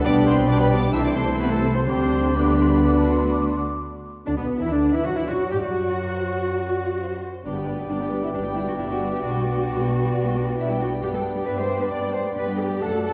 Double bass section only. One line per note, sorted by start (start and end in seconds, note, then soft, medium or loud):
0.05 0.90 B1 medium
0.94 1.86 C2 medium
1.88 3.60 D2 medium
4.27 4.37 D2 medium
4.38 4.46 B1 medium
4.61 4.72 E2 medium
4.72 4.94 D2 medium
4.95 5.06 E2 medium
5.07 5.18 F#2 medium
5.18 5.29 E2 medium
5.30 5.38 F#2 medium
5.53 5.57 G2 medium
5.65 7.20 F#2 medium
7.45 7.84 G1 medium
7.90 8.29 G1 soft
8.35 8.74 G1 medium
8.79 9.18 G1 medium
9.24 9.63 B1 medium
9.70 10.09 B1 soft
10.14 10.53 B1 medium
10.58 10.97 B1 soft
11.02 11.41 G2 medium
11.47 11.86 G2 medium
11.92 12.31 G2 medium
12.37 12.77 G2 medium
12.83 13.13 F#2 medium